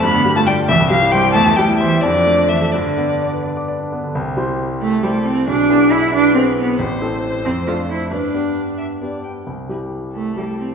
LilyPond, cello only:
\new Staff \with { instrumentName = "Cello" } { \time 6/8 \key c \major \tempo 4. = 90 b8. a16 g8 e8 f8 g8 | a8 g8 e8 d4 e8 | d4. r4. | r4. a8 g8 c'8 |
d'4 e'8 d'8 c'8 b8 | r4. c'8 f'8 e'8 | d'4. r4. | r4. a8 g8 c'8 | }